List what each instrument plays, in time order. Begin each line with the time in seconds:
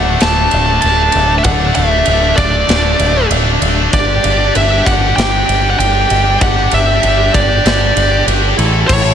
Already playing: picked electric bass D1, lead electric guitar F#5
0.03 distorted electric guitar A3 D4
0.11 distorted electric guitar A3 D4
0.18 distorted electric guitar A3 D4, lead electric guitar A5, snare, ride
0.22 picked electric bass D1, distorted electric guitar A3
0.27 distorted electric guitar D4
0.35 distorted electric guitar A3 D4
0.42 distorted electric guitar A3 D4
0.50 picked electric bass D1, distorted electric guitar A3 D4, ride
0.58 distorted electric guitar A3 D4
0.65 distorted electric guitar A3 D4
0.72 distorted electric guitar A3 D4
0.81 picked electric bass D1, distorted electric guitar A3 D4, lead electric guitar A5, ride
0.89 distorted electric guitar A3 D4
0.97 distorted electric guitar A3 D4
1.05 distorted electric guitar A3 D4
1.12 picked electric bass D1, distorted electric guitar A3 D4, ride
1.20 distorted electric guitar A3 D4
1.27 distorted electric guitar A3 D4
1.35 distorted electric guitar A3 D4, lead electric guitar E5
1.44 picked electric bass D1, distorted electric guitar A3 D4, lead electric guitar F#5, kick, ride
1.52 distorted electric guitar A3 D4
1.60 distorted electric guitar A3 D4
1.67 distorted electric guitar A3 D4
1.75 picked electric bass D1, distorted electric guitar A3 D4, lead electric guitar E5, ride
1.83 distorted electric guitar A3 D4
1.91 distorted electric guitar A3 D4
1.98 distorted electric guitar A3 D4
2.06 picked electric bass D1, distorted electric guitar A3 D4, ride
2.14 distorted electric guitar A3 D4
2.21 distorted electric guitar A3 D4
2.29 distorted electric guitar A3 D4
2.36 picked electric bass D1, distorted electric guitar A3 D4, lead electric guitar D5, kick, ride
2.45 distorted electric guitar A3 D4
2.52 distorted electric guitar A3 D4
2.60 distorted electric guitar A3 D4
2.67 picked electric bass D1, distorted electric guitar A3 D4, snare, ride
2.75 distorted electric guitar A3 D4
2.84 distorted electric guitar A3 D4
2.91 distorted electric guitar A3 D4
2.99 picked electric bass D1, distorted electric guitar A3 D4, ride
3.06 distorted electric guitar A3 D4
3.14 distorted electric guitar A3 D4
3.22 distorted electric guitar A3 D4
3.30 picked electric bass D1, distorted electric guitar A3 D4, ride
3.37 distorted electric guitar A3 D4
3.45 distorted electric guitar A3 D4
3.53 distorted electric guitar A3 D4
3.60 picked electric bass D1, distorted electric guitar A3 D4, ride
3.69 distorted electric guitar A3 D4
3.75 distorted electric guitar A3 D4
3.82 distorted electric guitar A3 D4
3.92 picked electric bass G1, distorted electric guitar D4 G4, lead electric guitar D5, kick, ride
4.00 distorted electric guitar D4 G4
4.07 distorted electric guitar D4 G4
4.15 distorted electric guitar D4 G4
4.24 picked electric bass G1, distorted electric guitar D4 G4, ride
4.31 distorted electric guitar D4 G4
4.38 distorted electric guitar D4 G4
4.45 distorted electric guitar D4 G4
4.54 picked electric bass G1, distorted electric guitar D4 G4, lead electric guitar E5, ride
4.61 distorted electric guitar D4 G4
4.69 distorted electric guitar D4 G4
4.77 distorted electric guitar D4 G4
4.85 picked electric bass G1, distorted electric guitar D4 G4, lead electric guitar F#5, kick, ride
4.93 distorted electric guitar D4 G4
4.99 distorted electric guitar D4 G4
5.08 distorted electric guitar D4 G4
5.15 picked electric bass G1, distorted electric guitar D4 G4, lead electric guitar G5, ride
5.19 snare
5.24 distorted electric guitar D4 G4
5.31 distorted electric guitar D4 G4
5.38 distorted electric guitar D4 G4
5.45 picked electric bass G1, distorted electric guitar D4 G4, ride
5.54 distorted electric guitar D4 G4
5.62 distorted electric guitar D4 G4
5.69 distorted electric guitar D4 G4, lead electric guitar F#5
5.77 picked electric bass G1, distorted electric guitar D4 G4, lead electric guitar G5, ride
5.85 distorted electric guitar D4 G4
5.92 distorted electric guitar D4 G4
6.00 distorted electric guitar D4 G4
6.07 distorted electric guitar D4 G4, ride
6.11 picked electric bass G1
6.15 distorted electric guitar D4 G4
6.23 distorted electric guitar D4 G4
6.31 distorted electric guitar D4 G4
6.40 picked electric bass G1, distorted electric guitar D4 G4, lead electric guitar F#5, kick, ride
6.47 distorted electric guitar D4 G4
6.56 distorted electric guitar D4 G4
6.63 distorted electric guitar D4 G4
6.71 picked electric bass G1, distorted electric guitar D4 G4, lead electric guitar E5, ride
6.79 distorted electric guitar D4 G4
6.85 distorted electric guitar D4 G4
6.93 distorted electric guitar D4 G4
7.02 picked electric bass G1, distorted electric guitar D4 G4, ride
7.10 distorted electric guitar D4 G4
7.17 distorted electric guitar D4 G4
7.25 distorted electric guitar D4 G4
7.33 picked electric bass G1, distorted electric guitar D4 G4, lead electric guitar D5, kick, ride
7.40 distorted electric guitar D4 G4
7.48 distorted electric guitar D4 G4
7.57 distorted electric guitar D4 G4
7.64 picked electric bass G1, distorted electric guitar D4 G4, snare, ride
7.72 distorted electric guitar D4 G4
7.78 distorted electric guitar D4 G4
7.86 distorted electric guitar D4 G4
7.95 picked electric bass G1, distorted electric guitar D4 G4, ride
8.03 distorted electric guitar D4 G4
8.11 distorted electric guitar D4 G4
8.18 distorted electric guitar D4 G4
8.26 picked electric bass G1, distorted electric guitar D4 G4, ride
8.34 distorted electric guitar D4 G4
8.42 distorted electric guitar D4 G4
8.50 distorted electric guitar D4 G4
8.58 picked electric bass A1, distorted electric guitar E4 A4, ride
8.65 distorted electric guitar E4 A4
8.73 distorted electric guitar E4 A4
8.81 distorted electric guitar E4 A4
8.88 picked electric bass A1, distorted electric guitar E4 A4, lead electric guitar C#5, kick, crash
8.96 distorted electric guitar E4 A4
9.04 distorted electric guitar E4 A4